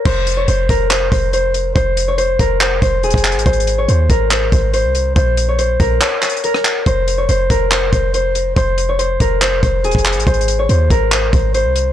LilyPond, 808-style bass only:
\new Staff \with { instrumentName = "808-style bass" } { \clef bass \time 4/4 \key f \minor \tempo 4 = 141 f,,4 f,,8 f,,4 f,,4. | f,,4. f,,4 f,,8 ees,,16 f,,8 aes,,16 | aes,,4 ees,8 aes,,4 aes,,8. c,8. | bes,,4. bes,,8 r2 |
f,,4 f,,8 f,,4 f,,4. | f,,4. f,,4 f,,8 ees,,16 f,,8 aes,,16 | aes,,4 ees,8 aes,,4 aes,,8. c,8. | }